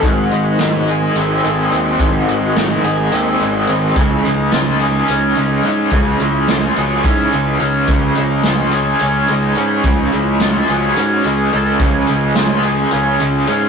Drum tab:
HH |xxxxxxx|xxxxxxx|xxxxxxx|xxxxxxx|
SD |--o----|--o----|-ooo-oo|--o----|
BD |o------|o------|o------|o---o--|

HH |xxxxxxx|xxxxxxx|xxxxxxx|
SD |--o----|--o----|--o----|
BD |o------|o------|o------|